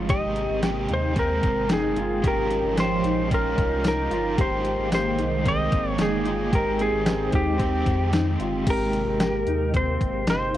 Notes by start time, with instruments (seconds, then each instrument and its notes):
Already playing: overdriven electric guitar F4 C5
0.08 sub bass G#1, analog synth pad C3 G#3 A#3 G5, overdriven electric guitar G#3 C4 G4 A#4, clean electric guitar G4, electric slide guitar D#5, kick, closed hi-hat
0.36 closed hi-hat
0.50 sub bass G#1
0.62 overdriven electric guitar G#3 C4 G4 A#4, clean electric guitar G4, snare, closed hi-hat, tambourine
0.89 sub bass D#2, clean electric guitar D#4, closed hi-hat
0.94 electric slide guitar C5
1.14 overdriven electric guitar G#3 C4, clean electric guitar C4, kick, closed hi-hat
1.19 electric slide guitar A#4, overdriven electric guitar A#4
1.43 sub bass G#1, kick, closed hi-hat
1.69 sub bass G1, clean electric guitar D#4, snare, closed hi-hat, tambourine
1.74 electric slide guitar G#4
1.96 sub bass G1, clean electric guitar F4, closed hi-hat
2.22 sub bass G#1, analog synth pad F3 C#4 D#4, overdriven electric guitar G#3 C#4 F4 G4, clean electric guitar G4, kick, closed hi-hat
2.27 electric slide guitar A#4
2.51 closed hi-hat
2.64 sub bass G#1
2.76 overdriven electric guitar G#3 C#4 F4, clean electric guitar G4, snare, closed hi-hat, tambourine
2.80 overdriven electric guitar G4, electric slide guitar C5
3.04 sub bass A#1, clean electric guitar D#4, closed hi-hat
3.29 overdriven electric guitar G#3 C#4 F4 G4, clean electric guitar C#4, kick, closed hi-hat
3.34 electric slide guitar A#4
3.58 sub bass C2, kick, closed hi-hat
3.84 clean electric guitar D#4, electric slide guitar A#4, snare, closed hi-hat, tambourine
4.11 sub bass G1, clean electric guitar F4, overdriven electric guitar F4 G4, closed hi-hat
4.15 overdriven electric guitar C#4
4.37 sub bass G#1, analog synth pad D#3 G#3 A#3 G5, overdriven electric guitar G#3 A#3, clean electric guitar G4, kick, closed hi-hat
4.41 overdriven electric guitar D#4 G4, electric slide guitar C5
4.65 closed hi-hat
4.78 sub bass G#1
4.92 clean electric guitar G4, electric slide guitar C5, snare, closed hi-hat, tambourine
5.18 sub bass C2, clean electric guitar D#4, closed hi-hat
5.44 overdriven electric guitar G#3 A#3 D#4 G4, clean electric guitar C4, kick, closed hi-hat
5.48 electric slide guitar D#5
5.72 sub bass G#1, kick, closed hi-hat
5.90 electric slide guitar C#5
5.98 sub bass G1, clean electric guitar D#4, electric slide guitar G#4, snare, closed hi-hat, tambourine
6.23 sub bass G1, overdriven electric guitar D#4 G4, clean electric guitar F4, closed hi-hat
6.28 overdriven electric guitar A#3
6.51 sub bass G#1, overdriven electric guitar G#3 C4, analog synth pad C4, clean electric guitar G4, kick, closed hi-hat
6.55 overdriven electric guitar D#4, electric slide guitar A#4
6.79 electric slide guitar G#4, closed hi-hat
6.92 sub bass G#1
7.05 clean electric guitar G4, snare, closed hi-hat, tambourine
7.33 sub bass D#2, clean electric guitar D#4, electric slide guitar G4, kick, closed hi-hat
7.58 overdriven electric guitar G#3 C4, clean electric guitar C4, kick, closed hi-hat
7.63 overdriven electric guitar D#4 G4
7.87 sub bass F2, kick, closed hi-hat
8.13 clean electric guitar D#4, snare, closed hi-hat, tambourine
8.40 sub bass G1, clean electric guitar F4, closed hi-hat
8.66 sub bass G#1, analog synth pad C3 G#3 A#3 G4, clean electric guitar G4, electric slide guitar A#4, kick, closed hi-hat, crash
8.93 closed hi-hat
9.07 sub bass G#1
9.20 clean electric guitar G4, snare, closed hi-hat, tambourine
9.47 sub bass D#2, clean electric guitar D#4, closed hi-hat
9.74 clean electric guitar C4, electric slide guitar C5, kick, closed hi-hat
10.01 sub bass G#1, kick, closed hi-hat
10.27 sub bass G1, clean electric guitar D#4, electric slide guitar C5, snare, closed hi-hat, tambourine
10.54 sub bass G1, closed hi-hat